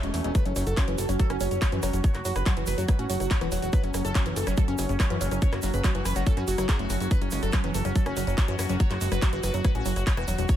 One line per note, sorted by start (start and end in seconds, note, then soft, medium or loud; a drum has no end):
0.00 0.11 E1 medium
0.00 0.34 F#3 medium
0.00 0.09 G#3 medium
0.00 0.37 A3 medium
0.00 0.10 C#4 medium
0.00 closed hi-hat medium
0.14 0.21 E1 loud
0.14 0.17 A3 medium
0.14 0.21 C#4 medium
0.14 cross-stick soft
0.14 open hi-hat loud
0.24 0.32 E1 medium
0.24 0.33 G#3 medium
0.24 0.31 C#4 medium
0.24 closed hi-hat medium
0.35 0.38 F#3 medium
0.35 10.56 F#3 medium
0.35 3.75 F#4 medium
0.35 0.42 B4 loud
0.35 kick loud
0.35 closed hi-hat loud
0.35 shaker soft
0.45 0.53 F#1 medium
0.45 0.49 F#3 medium
0.45 0.52 C#4 medium
0.45 closed hi-hat medium
0.56 0.64 F#1 loud
0.56 0.62 F#3 loud
0.56 0.63 C#4 medium
0.56 cross-stick soft
0.56 open hi-hat loud
0.56 shaker medium
0.67 0.74 F#1 medium
0.67 0.74 A4 medium
0.67 closed hi-hat medium
0.67 shaker soft
0.77 0.86 F#3 loud
0.77 0.84 C#4 medium
0.77 kick loud
0.77 cross-stick medium
0.77 clap loud
0.77 closed hi-hat medium
0.77 shaker soft
0.88 0.95 F#1 medium
0.88 0.93 E3 loud
0.88 0.95 C#4 medium
0.88 closed hi-hat medium
0.98 1.06 F#1 loud
0.98 1.07 E3 medium
0.98 1.05 A4 medium
0.98 open hi-hat loud
0.98 shaker loud
1.09 1.16 F#1 medium
1.09 1.15 F#3 loud
1.09 1.16 C#4 medium
1.09 cross-stick soft
1.09 closed hi-hat medium
1.09 shaker medium
1.19 1.25 F#3 loud
1.19 1.26 A4 loud
1.19 kick loud
1.19 closed hi-hat loud
1.19 shaker soft
1.30 1.37 F#1 medium
1.30 1.37 C#4 medium
1.30 1.36 C#4 loud
1.30 cross-stick medium
1.30 closed hi-hat medium
1.40 1.48 F#1 loud
1.40 1.46 F#3 loud
1.40 1.48 C#4 medium
1.40 open hi-hat loud
1.40 shaker loud
1.51 1.59 F#1 medium
1.51 1.55 F#3 medium
1.51 1.58 C#4 medium
1.51 closed hi-hat medium
1.51 shaker medium
1.62 1.67 F#3 medium
1.62 1.69 C#5 medium
1.62 kick loud
1.62 cross-stick soft
1.62 clap loud
1.62 closed hi-hat medium
1.62 shaker soft
1.72 1.80 F#2 medium
1.72 1.78 E3 loud
1.72 1.79 C#4 medium
1.72 closed hi-hat medium
1.83 1.90 F#1 loud
1.83 1.89 F#3 loud
1.83 1.90 C#4 medium
1.83 cross-stick medium
1.83 open hi-hat loud
1.83 shaker medium
1.93 2.01 F#1 loud
1.93 1.97 F#3 medium
1.93 2.00 C#4 medium
1.93 closed hi-hat medium
1.93 shaker medium
2.04 2.07 F#3 medium
2.04 2.11 C#5 loud
2.04 kick loud
2.04 closed hi-hat loud
2.04 shaker soft
2.15 2.22 F#1 medium
2.15 2.18 F#3 medium
2.15 2.21 F#4 medium
2.15 cross-stick soft
2.15 clap soft
2.15 closed hi-hat medium
2.25 2.33 F#1 loud
2.25 2.31 F#3 loud
2.25 2.32 F#4 medium
2.25 open hi-hat loud
2.25 shaker loud
2.35 2.43 F#1 loud
2.35 2.39 F#3 medium
2.35 2.43 B4 medium
2.35 cross-stick medium
2.35 closed hi-hat medium
2.35 shaker medium
2.46 2.55 F#3 loud
2.46 2.53 F#4 medium
2.46 kick loud
2.46 clap loud
2.46 closed hi-hat loud
2.46 shaker soft
2.57 2.64 F#1 medium
2.57 2.62 E3 loud
2.57 2.64 F#4 medium
2.57 closed hi-hat medium
2.67 2.75 F#1 loud
2.67 2.76 E3 medium
2.67 2.74 B4 medium
2.67 cross-stick soft
2.67 open hi-hat loud
2.67 shaker loud
2.78 2.85 F#1 medium
2.78 2.84 F#3 loud
2.78 2.85 F#4 medium
2.78 closed hi-hat medium
2.78 shaker medium
2.88 2.94 F#3 loud
2.88 2.95 B4 loud
2.88 kick loud
2.88 cross-stick medium
2.88 closed hi-hat loud
2.88 shaker soft
2.99 3.06 A1 medium
2.99 3.05 C#4 loud
2.99 3.06 F#4 medium
2.99 closed hi-hat medium
3.10 3.17 F#1 loud
3.10 3.15 F#3 loud
3.10 3.17 F#4 medium
3.10 open hi-hat loud
3.10 shaker loud
3.20 3.28 F#1 medium
3.20 3.24 F#3 medium
3.20 3.27 F#4 medium
3.20 cross-stick soft
3.20 closed hi-hat medium
3.20 shaker medium
3.31 3.36 F#3 medium
3.31 3.38 C#5 medium
3.31 kick loud
3.31 clap loud
3.31 closed hi-hat medium
3.31 shaker soft
3.41 3.49 E1 medium
3.41 3.47 E3 loud
3.41 3.48 F#4 medium
3.41 cross-stick medium
3.41 closed hi-hat medium
3.52 3.59 E1 loud
3.52 3.58 F#3 loud
3.52 3.59 F#4 medium
3.52 open hi-hat loud
3.52 shaker medium
3.62 3.70 E1 loud
3.62 3.66 F#3 medium
3.62 3.69 F#4 medium
3.62 closed hi-hat medium
3.62 shaker medium
3.73 3.76 F#3 medium
3.73 7.13 C#4 medium
3.73 3.80 B4 loud
3.73 kick loud
3.73 cross-stick soft
3.73 closed hi-hat medium
3.73 shaker soft
3.84 3.91 F#1 medium
3.84 3.87 F#3 medium
3.84 3.91 C#4 medium
3.84 closed hi-hat medium
3.94 4.02 F#1 loud
3.94 4.00 F#3 medium
3.94 4.01 C#4 medium
3.94 cross-stick medium
3.94 open hi-hat loud
3.94 shaker loud
4.05 4.12 F#1 loud
4.05 4.08 F#3 medium
4.05 4.12 A4 medium
4.05 closed hi-hat medium
4.05 shaker medium
4.15 4.24 F#3 loud
4.15 4.22 C#4 medium
4.15 kick loud
4.15 clap loud
4.15 closed hi-hat medium
4.15 shaker soft
4.26 4.33 F#1 medium
4.26 4.31 E3 loud
4.26 4.33 C#4 medium
4.26 cross-stick soft
4.26 closed hi-hat medium
4.36 4.44 F#1 loud
4.36 4.45 E3 medium
4.36 4.43 A4 medium
4.36 open hi-hat loud
4.36 shaker loud
4.47 4.54 F#1 medium
4.47 4.53 F#3 loud
4.47 4.54 C#4 medium
4.47 cross-stick medium
4.47 closed hi-hat medium
4.47 shaker medium
4.57 4.63 F#3 loud
4.57 4.64 A4 loud
4.57 kick loud
4.57 closed hi-hat medium
4.57 shaker soft
4.68 4.75 F#1 medium
4.68 4.75 C#4 medium
4.68 4.74 C#4 loud
4.68 closed hi-hat medium
4.78 4.86 F#1 loud
4.78 4.84 F#3 loud
4.78 4.86 C#4 medium
4.78 cross-stick soft
4.78 open hi-hat loud
4.78 shaker loud
4.89 4.97 F#1 medium
4.89 4.93 F#3 medium
4.89 4.96 C#4 medium
4.89 closed hi-hat soft
4.89 shaker medium
5.00 5.05 F#3 medium
5.00 5.07 C#5 medium
5.00 kick loud
5.00 cross-stick medium
5.00 clap loud
5.00 closed hi-hat medium
5.00 shaker soft
5.10 5.18 F#2 medium
5.10 5.16 E3 loud
5.10 5.17 C#4 medium
5.10 closed hi-hat medium
5.21 5.28 F#1 loud
5.21 5.27 F#3 loud
5.21 5.28 C#4 medium
5.21 open hi-hat loud
5.21 shaker loud
5.31 5.39 F#1 loud
5.31 5.35 F#3 medium
5.31 5.38 C#4 medium
5.31 cross-stick soft
5.31 closed hi-hat medium
5.31 shaker medium
5.42 5.45 F#3 medium
5.42 5.49 C#5 loud
5.42 kick loud
5.42 closed hi-hat medium
5.42 shaker soft
5.53 5.60 F#1 medium
5.53 5.56 F#3 medium
5.53 5.60 F#4 medium
5.53 cross-stick medium
5.53 clap soft
5.53 closed hi-hat medium
5.62 5.71 F#1 loud
5.62 5.69 F#3 loud
5.62 5.70 F#4 medium
5.62 open hi-hat loud
5.62 shaker loud
5.74 5.81 F#1 loud
5.74 5.77 F#3 medium
5.74 5.81 B4 medium
5.74 closed hi-hat medium
5.74 shaker medium
5.84 5.93 F#3 loud
5.84 5.91 F#4 medium
5.84 kick loud
5.84 cross-stick soft
5.84 clap loud
5.84 closed hi-hat medium
5.84 shaker soft
5.95 6.02 F#1 medium
5.95 6.01 E3 loud
5.95 6.02 F#4 medium
5.95 closed hi-hat soft
6.05 6.13 F#1 loud
6.05 6.14 E3 medium
6.05 6.12 B4 medium
6.05 cross-stick medium
6.05 open hi-hat loud
6.05 shaker loud
6.15 6.23 F#1 medium
6.15 6.22 F#3 loud
6.15 6.23 F#4 medium
6.15 closed hi-hat medium
6.15 shaker medium
6.26 6.32 F#3 loud
6.26 6.33 A4 loud
6.26 kick loud
6.26 closed hi-hat medium
6.26 shaker soft
6.37 6.44 F#2 medium
6.37 6.43 C#4 loud
6.37 6.44 F#4 medium
6.37 cross-stick soft
6.37 closed hi-hat medium
6.48 6.55 F#1 loud
6.48 6.56 F#4 medium
6.48 6.55 F#4 medium
6.48 open hi-hat loud
6.48 shaker medium
6.58 6.66 F#1 loud
6.58 6.67 F#3 loud
6.58 6.65 F#4 medium
6.58 cross-stick medium
6.58 closed hi-hat soft
6.58 shaker medium
6.69 6.76 G#4 medium
6.69 kick loud
6.69 clap loud
6.69 closed hi-hat medium
6.69 shaker soft
6.79 6.87 F#1 medium
6.79 6.85 A3 medium
6.79 6.86 F#4 medium
6.79 closed hi-hat soft
6.90 6.97 F#1 loud
6.90 6.96 F#4 medium
6.90 6.97 F#4 medium
6.90 cross-stick soft
6.90 open hi-hat loud
6.90 shaker medium
7.00 7.08 F#1 medium
7.00 7.06 F#3 medium
7.00 7.07 F#4 medium
7.00 closed hi-hat medium
7.00 shaker soft
7.11 7.14 F#3 medium
7.11 10.51 F#4 medium
7.11 7.18 B4 loud
7.11 kick loud
7.11 closed hi-hat medium
7.11 shaker soft
7.22 7.29 F#1 medium
7.22 7.25 F#3 medium
7.22 7.29 C#4 medium
7.22 closed hi-hat medium
7.31 7.40 F#1 loud
7.31 7.41 G#3 medium
7.31 7.39 C#4 medium
7.31 cross-stick soft
7.31 open hi-hat loud
7.31 shaker medium
7.43 7.50 F#1 loud
7.43 7.46 F#3 medium
7.43 7.50 A4 medium
7.43 closed hi-hat soft
7.43 shaker medium
7.52 7.62 F#3 loud
7.52 7.60 C#4 medium
7.52 kick loud
7.52 cross-stick medium
7.52 clap loud
7.52 closed hi-hat medium
7.52 shaker soft
7.64 7.71 F#1 medium
7.64 7.70 E3 loud
7.64 7.71 C#4 medium
7.64 closed hi-hat medium
7.74 7.82 F#1 medium
7.74 7.83 E3 medium
7.74 7.81 A4 medium
7.74 open hi-hat loud
7.74 shaker medium
7.85 7.92 F#1 medium
7.85 7.91 F#3 loud
7.85 7.92 C#4 medium
7.85 cross-stick soft
7.85 closed hi-hat medium
7.85 shaker medium
7.95 8.01 F#3 loud
7.95 8.02 A4 loud
7.95 kick loud
7.95 closed hi-hat medium
7.95 shaker soft
8.06 8.14 F#1 medium
8.06 8.13 C#4 medium
8.06 8.12 C#4 loud
8.06 cross-stick medium
8.06 closed hi-hat medium
8.17 8.24 F#1 loud
8.17 8.22 F#3 loud
8.17 8.24 C#4 medium
8.17 open hi-hat loud
8.17 shaker loud
8.27 8.35 F#1 loud
8.27 8.31 F#3 medium
8.27 8.34 C#4 medium
8.27 closed hi-hat soft
8.27 shaker medium
8.38 8.45 C#5 loud
8.38 kick loud
8.38 cross-stick soft
8.38 clap loud
8.38 closed hi-hat medium
8.38 shaker soft
8.48 8.56 F#2 medium
8.48 8.54 E3 loud
8.48 8.55 C#4 medium
8.48 closed hi-hat medium
8.59 8.66 F#1 loud
8.59 8.65 F#3 loud
8.59 8.66 C#4 medium
8.59 cross-stick medium
8.59 open hi-hat loud
8.59 shaker loud
8.69 8.77 F#1 loud
8.69 8.73 F#3 medium
8.69 8.76 C#4 medium
8.69 closed hi-hat medium
8.69 shaker soft
8.80 8.83 F#3 medium
8.80 8.87 C#5 loud
8.80 kick loud
8.80 closed hi-hat loud
8.80 shaker soft
8.90 8.98 F#1 medium
8.90 8.94 F#3 medium
8.90 8.97 F#4 medium
8.90 cross-stick soft
8.90 clap soft
8.90 closed hi-hat medium
9.01 9.09 F#1 loud
9.01 9.10 G#3 medium
9.01 9.08 F#4 medium
9.01 open hi-hat loud
9.01 shaker loud
9.12 9.19 F#1 loud
9.12 9.15 F#3 medium
9.12 9.19 B4 medium
9.12 cross-stick medium
9.12 closed hi-hat medium
9.12 shaker medium
9.22 9.31 F#3 loud
9.22 9.29 F#4 medium
9.22 kick loud
9.22 clap loud
9.22 closed hi-hat medium
9.22 shaker soft
9.33 9.40 F#1 medium
9.33 9.39 E3 loud
9.33 9.40 F#4 medium
9.33 closed hi-hat medium
9.43 9.51 F#1 medium
9.43 9.52 E3 medium
9.43 9.50 B4 medium
9.43 cross-stick soft
9.43 open hi-hat loud
9.43 shaker medium
9.54 9.61 F#1 medium
9.54 9.60 F#3 loud
9.54 9.61 F#4 medium
9.54 closed hi-hat medium
9.54 shaker medium
9.64 9.70 F#3 loud
9.64 9.71 B4 loud
9.64 kick loud
9.64 cross-stick medium
9.64 closed hi-hat medium
9.64 shaker soft
9.75 9.83 A1 medium
9.75 9.81 C#4 loud
9.75 9.82 F#4 medium
9.75 closed hi-hat medium
9.85 9.93 F#1 loud
9.85 9.91 F#3 loud
9.85 9.93 F#4 medium
9.85 open hi-hat loud
9.85 shaker medium
9.96 10.04 F#1 medium
9.96 10.00 F#3 medium
9.96 10.03 F#4 medium
9.96 cross-stick soft
9.96 closed hi-hat medium
9.96 shaker medium
10.07 10.12 F#3 medium
10.07 10.14 C#5 medium
10.07 kick loud
10.07 clap loud
10.07 closed hi-hat medium
10.07 shaker soft
10.17 10.25 E1 medium
10.17 10.23 E3 loud
10.17 10.24 F#4 medium
10.17 cross-stick medium
10.17 closed hi-hat soft
10.28 10.35 E1 loud
10.28 10.34 F#3 loud
10.28 10.35 F#4 medium
10.28 open hi-hat loud
10.28 shaker loud
10.38 10.46 E1 medium
10.38 10.42 F#3 medium
10.38 10.45 F#4 medium
10.38 closed hi-hat medium
10.38 shaker soft
10.48 10.52 F#3 medium
10.48 10.56 A3 medium
10.48 10.56 C#5 loud
10.48 kick loud
10.48 cross-stick soft
10.48 closed hi-hat loud
10.48 shaker soft